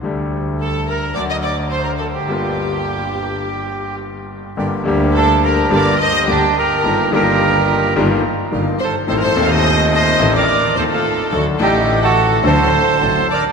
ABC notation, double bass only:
X:1
M:4/4
L:1/8
Q:1/4=107
K:Gm
V:1 name="Double bass" clef=bass
D,,4 D,,4 | G,,,8 | G,,, D,,3 G,,, z D,, z | G,,, G,,,3 G,,, z G,,, z |
A,,, E,,3 A,,, z E,, z | D,, A,,,3 D,, z A,,, z |]